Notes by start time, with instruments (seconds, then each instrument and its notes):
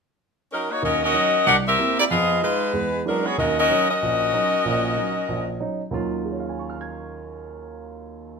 0.53 saxophone section F#3 C#4 D#4 A#4
0.70 saxophone section A#3 D#4 F#4 C#5
0.82 grand piano D#2 D#3, saxophone section C#4 F#4 A#4 D#5
1.04 saxophone section C#4 F#4 A#4 D#5
1.13 grand piano F#3 C#4 D#4
1.47 grand piano C2, saxophone section D4 G4 A#4 F#5
1.67 saxophone section C4 G4 A#4 E5
1.78 grand piano A#3 C4 E4
1.99 saxophone section A#3 E4 G4 D5
2.11 grand piano F2 F3, saxophone section B3 F4 G#4 D#5
2.42 grand piano G#3 D#4 F4, saxophone section G#3 D#4 F4 B4
2.73 grand piano E2 G#3
3.05 grand piano F#3 G#3 C#4 D4 E4, saxophone section F#3 B3 D4 A#4
3.26 saxophone section B3 F#4 G#4 C#5
3.38 grand piano D#2 D#3, saxophone section C#4 F#4 A#4 D#5
3.59 saxophone section C#4 F#4 A#4 D#5
3.70 grand piano F#3 C#4 D#4
3.90 saxophone section C#4 F#4 A#4 D#5
4.02 grand piano A#1
4.33 grand piano F#3 C#4 D#4
4.65 grand piano A#1 A#2
4.97 grand piano F#3 C#4 D#4
5.28 grand piano A#1
5.60 grand piano F#3 C#4 D#4
5.91 grand piano D#2 D#3 F#3 C#4 F4
6.24 grand piano G#4
6.32 grand piano C#5
6.40 grand piano F5
6.49 grand piano G#5
6.59 grand piano C#6
6.70 grand piano F6
6.81 grand piano G#6